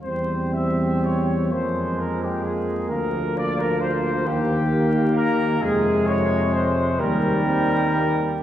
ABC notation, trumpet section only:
X:1
M:6/8
L:1/16
Q:3/8=43
K:Ebmix
V:1 name="Trumpet section"
c2 =e2 d2 c2 B G A2 | B2 =d B c2 G4 B2 | A2 d2 c2 B6 |]